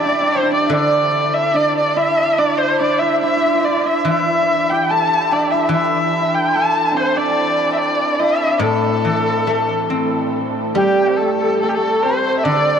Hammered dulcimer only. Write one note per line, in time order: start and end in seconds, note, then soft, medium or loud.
0.00 0.98 C4 soft
0.00 1.96 E4 medium
0.00 2.14 G4 medium
0.05 0.11 D4 medium
0.21 0.28 D4 medium
0.28 0.35 D4 medium
0.36 0.42 D4 medium
0.43 0.51 D4 medium
0.52 0.72 D4 medium
0.72 1.54 D4 medium
1.54 2.38 D4 medium
1.96 3.01 E4 medium
2.38 2.80 D4 medium
2.80 5.32 D4 medium
3.01 3.22 E4 medium
3.22 3.28 E4 medium
3.29 3.36 E4 medium
3.37 3.45 E4 medium
3.46 3.54 E4 medium
3.54 3.61 E4 medium
3.61 3.67 E4 soft
3.67 3.77 E4 medium
3.77 3.85 E4 medium
3.85 4.08 E4 medium
4.08 5.53 E4 medium
4.71 7.85 G4 medium
4.91 6.55 A4 medium
5.32 6.91 D4 medium
5.53 5.74 E4 medium
5.74 8.19 E4 medium
6.56 9.48 A4 medium
6.91 10.95 C4 medium
6.91 7.16 D4 medium
7.16 10.90 D4 medium
8.19 11.67 E4 medium
8.61 11.21 A3 medium
10.77 11.27 G3 medium
11.21 11.62 A3 medium
11.63 11.77 A3 medium
11.77 12.80 A3 medium
12.05 12.80 C4 medium
12.45 12.80 D4 medium